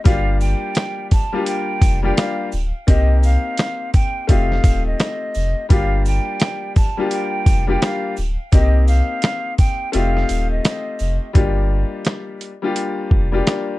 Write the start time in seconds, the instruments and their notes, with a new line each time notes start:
0.04 sub bass G1, upright piano G3 A#3 D4 F4 G4, flute F5, kick, closed hi-hat, sleigh bells
0.41 flute G5, shaker, sleigh bells
0.75 snare, closed hi-hat, sleigh bells
1.11 flute A5, kick, closed hi-hat, shaker, sleigh bells
1.33 upright piano G3 A#3 D4 F4 G4
1.46 flute G5, closed hi-hat, sleigh bells
1.82 sub bass F1, kick, closed hi-hat, shaker, sleigh bells
2.03 upright piano G3 A#3 D4 F4 G4, flute G5
2.17 flute F5, snare, closed hi-hat, sleigh bells
2.52 sub bass D1, shaker, sleigh bells
2.87 sub bass C2, upright piano A#3 C4 D#4 G4, flute D#5, kick, closed hi-hat, sleigh bells
3.23 flute F5, shaker, sleigh bells
3.57 snare, closed hi-hat, sleigh bells
3.94 flute G5, kick, closed hi-hat, shaker, sleigh bells
4.27 sub bass F1, upright piano A3 C4 D#4 F4 G4, flute F5, kick, closed hi-hat, sleigh bells
4.52 snare
4.64 sub bass D#1, kick, closed hi-hat, shaker, sleigh bells
4.87 flute D#5
5.00 snare, closed hi-hat, sleigh bells
5.34 sub bass F1, shaker, sleigh bells
5.69 sub bass G1, upright piano G3 A#3 D4 F4 G4, flute F5, kick, closed hi-hat, sleigh bells
6.05 flute G5, shaker, sleigh bells
6.40 snare, closed hi-hat, sleigh bells
6.76 flute A5, kick, closed hi-hat, shaker, sleigh bells
6.97 upright piano G3 A#3 D4 F4 G4
7.11 flute G5, closed hi-hat, sleigh bells
7.46 sub bass F1, kick, closed hi-hat, shaker, sleigh bells
7.67 upright piano G3 A#3 D4 F4 G4, flute G5
7.82 flute F5, snare, closed hi-hat, sleigh bells
8.16 sub bass D1, shaker, sleigh bells
8.52 sub bass C2, upright piano A#3 C4 D#4 G4, flute D#5, kick, closed hi-hat, sleigh bells
8.88 flute F5, shaker, sleigh bells
9.22 snare, closed hi-hat, sleigh bells
9.58 flute G5, kick, closed hi-hat, shaker, sleigh bells
9.92 sub bass F1, upright piano A3 C4 D#4 F4 G4, flute F5, closed hi-hat, sleigh bells
10.17 snare
10.29 sub bass D#1, closed hi-hat, shaker, sleigh bells
10.51 flute D#5
10.64 snare, closed hi-hat, sleigh bells
10.99 sub bass F1, shaker, sleigh bells
11.33 sub bass G1, upright piano G3 A#3 D4 F4 G4, kick, closed hi-hat
12.05 snare, closed hi-hat
12.41 closed hi-hat
12.62 upright piano G3 A#3 D4 F4 G4
12.76 closed hi-hat
13.11 sub bass F1, kick
13.32 upright piano G3 A#3 D4 F4 G4
13.47 snare, closed hi-hat